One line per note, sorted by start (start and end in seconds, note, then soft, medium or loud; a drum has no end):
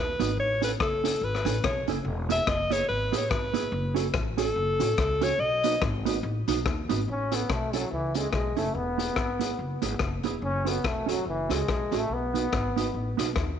0.00 0.17 D#2 medium
0.00 0.37 B4 medium
0.19 0.35 G#1 loud
0.19 0.30 B3 medium
0.19 0.30 D#4 medium
0.19 0.30 F#4 medium
0.19 0.30 B4 loud
0.19 closed hi-hat medium
0.37 0.73 A1 medium
0.37 0.62 C#5 loud
0.62 0.72 C#4 medium
0.62 0.72 E4 medium
0.62 0.72 A4 medium
0.62 0.72 B4 medium
0.62 0.72 C#5 medium
0.62 closed hi-hat medium
0.80 1.16 F#1 medium
0.80 1.26 A4 medium
0.80 kick loud
0.80 cross-stick loud
1.04 1.14 C#4 medium
1.04 1.14 E4 medium
1.04 1.14 A4 loud
1.04 1.15 C#5 loud
1.04 closed hi-hat loud
1.21 1.42 G#1 loud
1.21 1.64 B4 medium
1.35 cross-stick medium
1.45 1.60 A1 loud
1.45 1.55 C#4 medium
1.45 1.56 E4 medium
1.45 1.56 A4 medium
1.45 1.57 C#5 medium
1.45 closed hi-hat medium
1.63 1.84 B1 loud
1.63 1.87 C#5 medium
1.63 kick loud
1.63 cross-stick loud
1.87 2.02 F#1 medium
1.87 1.97 C#4 loud
1.87 1.98 E4 medium
1.87 1.98 A4 loud
1.87 1.98 C#5 loud
1.87 closed hi-hat medium
2.05 2.40 E1 loud
2.29 2.39 B3 medium
2.29 2.39 E4 loud
2.29 2.39 G#4 medium
2.29 2.40 B4 medium
2.29 2.50 E5 loud
2.29 closed hi-hat medium
2.47 2.83 F#1 medium
2.47 2.74 D#5 loud
2.47 kick loud
2.47 cross-stick loud
2.70 2.81 B3 medium
2.70 2.81 E4 medium
2.70 2.81 G#4 medium
2.70 2.82 B4 loud
2.70 2.88 C#5 loud
2.70 closed hi-hat loud
2.89 3.10 G#1 medium
2.89 3.19 B4 medium
3.12 3.28 A1 loud
3.12 3.22 B3 medium
3.12 3.23 E4 medium
3.12 3.23 G#4 loud
3.12 3.23 B4 medium
3.12 closed hi-hat medium
3.17 3.31 C#5 medium
3.30 3.66 G#1 medium
3.30 3.97 B4 medium
3.30 kick loud
3.30 cross-stick loud
3.54 3.64 B3 medium
3.54 3.64 E4 loud
3.54 3.65 G#4 loud
3.54 3.65 B4 loud
3.54 closed hi-hat medium
3.72 4.08 F#1 loud
3.95 4.05 C#4 medium
3.95 4.06 F#4 medium
3.95 4.06 A4 loud
3.95 4.06 C#5 loud
3.95 closed hi-hat medium
4.14 4.50 A1 medium
4.14 kick loud
4.14 cross-stick loud
4.38 4.48 C#4 medium
4.38 4.48 F#4 medium
4.38 5.25 A4 loud
4.38 4.49 A4 medium
4.38 4.49 C#5 loud
4.38 closed hi-hat loud
4.56 4.77 F#1 loud
4.80 4.95 A1 loud
4.80 4.90 C#4 medium
4.80 4.90 F#4 medium
4.80 4.90 A4 medium
4.80 4.91 C#5 loud
4.80 closed hi-hat medium
4.98 5.34 C#2 medium
4.98 kick loud
4.98 cross-stick loud
5.21 5.32 C#4 loud
5.21 5.32 F#4 loud
5.21 5.32 A4 loud
5.21 5.32 C#5 loud
5.21 5.42 C#5 loud
5.21 closed hi-hat medium
5.39 5.75 B1 loud
5.39 5.82 D#5 loud
5.64 5.74 B3 medium
5.64 5.74 D#4 medium
5.64 5.74 F#4 medium
5.64 5.75 B4 loud
5.64 closed hi-hat medium
5.82 6.18 G#1 loud
5.82 kick loud
5.82 cross-stick loud
6.05 6.15 B3 medium
6.05 6.16 D#4 medium
6.05 6.16 F#4 medium
6.05 6.17 B4 medium
6.05 closed hi-hat loud
6.23 6.44 A1 loud
6.48 6.63 B1 loud
6.48 6.58 B3 medium
6.48 6.58 D#4 loud
6.48 6.58 F#4 medium
6.48 6.59 B4 medium
6.48 closed hi-hat loud
6.66 6.87 D#2 loud
6.66 kick loud
6.66 cross-stick loud
6.89 7.05 G#1 loud
6.89 6.99 B3 medium
6.89 6.99 D#4 medium
6.89 7.00 F#4 medium
6.89 7.00 B4 medium
6.89 closed hi-hat medium
7.08 7.44 A1 medium
7.08 7.35 C#4 medium
7.32 7.52 B3 medium
7.32 7.41 C#4 medium
7.32 7.42 E4 medium
7.32 7.42 A4 medium
7.32 7.42 C#5 medium
7.32 closed hi-hat medium
7.49 7.85 B1 medium
7.49 7.76 A3 medium
7.49 kick medium
7.49 cross-stick loud
7.73 7.91 F#3 medium
7.73 7.83 C#4 medium
7.73 7.84 E4 medium
7.73 7.84 A4 medium
7.73 7.84 C#5 medium
7.73 closed hi-hat loud
7.91 8.27 C#2 medium
7.91 8.18 E3 medium
8.15 8.32 G#3 medium
8.15 8.25 C#4 medium
8.15 8.26 E4 medium
8.15 8.26 A4 medium
8.15 8.27 C#5 medium
8.15 closed hi-hat medium
8.33 8.54 B1 medium
8.33 8.59 G#3 medium
8.33 kick medium
8.33 cross-stick medium
8.57 8.73 F#1 medium
8.57 8.77 A3 medium
8.57 8.67 C#4 medium
8.57 8.67 E4 medium
8.57 8.68 A4 medium
8.57 8.68 C#5 medium
8.57 closed hi-hat medium
8.75 9.11 E1 loud
8.75 10.01 B3 medium
8.98 9.08 B3 medium
8.98 9.09 E4 medium
8.98 9.09 G#4 medium
8.98 9.09 B4 medium
8.98 closed hi-hat medium
9.16 9.53 G#1 medium
9.16 kick medium
9.16 cross-stick loud
9.39 9.50 B3 medium
9.39 9.51 E4 medium
9.39 9.51 G#4 medium
9.39 9.51 B4 medium
9.39 closed hi-hat loud
9.59 9.80 F#1 medium
9.82 9.98 G#1 medium
9.82 9.92 B3 medium
9.82 9.93 E4 medium
9.82 9.93 G#4 medium
9.82 9.93 B4 loud
9.82 closed hi-hat medium
9.99 10.21 F#1 medium
9.99 kick medium
9.99 cross-stick loud
10.23 10.41 E1 medium
10.23 10.34 B3 medium
10.23 10.35 E4 medium
10.23 10.35 G#4 medium
10.23 10.35 B4 medium
10.23 closed hi-hat medium
10.42 10.78 F#1 loud
10.42 10.69 C#4 loud
10.65 10.88 B3 medium
10.65 10.76 C#4 medium
10.65 10.76 F#4 medium
10.65 10.77 A4 medium
10.65 10.77 C#5 medium
10.65 closed hi-hat medium
10.84 11.20 E1 medium
10.84 11.12 A3 medium
10.84 kick loud
10.84 cross-stick loud
11.06 11.18 C#4 medium
11.06 11.18 F#4 medium
11.06 11.18 A4 loud
11.06 11.19 C#5 medium
11.06 closed hi-hat loud
11.11 11.27 F#3 medium
11.25 11.47 F#1 medium
11.25 11.54 E3 medium
11.49 11.65 C#2 loud
11.49 11.99 G#3 medium
11.49 11.60 C#4 medium
11.49 11.61 F#4 medium
11.49 11.61 A4 medium
11.49 11.61 C#5 medium
11.49 cross-stick medium
11.49 closed hi-hat medium
11.68 11.89 B1 medium
11.68 kick loud
11.68 cross-stick medium
11.91 12.07 A1 medium
11.91 12.02 C#4 medium
11.91 12.03 F#4 loud
11.91 12.03 A4 medium
11.91 12.03 C#5 medium
11.91 closed hi-hat medium
11.98 12.15 A3 loud
12.09 12.46 B1 medium
12.14 13.38 B3 loud
12.34 12.44 B3 medium
12.34 12.45 D#4 medium
12.34 12.45 F#4 medium
12.34 12.45 B4 medium
12.34 closed hi-hat medium
12.52 12.88 G#1 loud
12.52 kick loud
12.52 cross-stick loud
12.76 12.86 B3 medium
12.76 12.87 D#4 medium
12.76 12.87 F#4 medium
12.76 12.87 B4 loud
12.76 closed hi-hat loud
12.94 13.15 A1 medium
13.17 13.34 B1 medium
13.17 13.28 B3 medium
13.17 13.28 D#4 medium
13.17 13.29 F#4 medium
13.17 13.29 B4 medium
13.17 cross-stick medium
13.17 closed hi-hat loud
13.36 13.57 D#2 medium
13.36 kick loud
13.36 cross-stick medium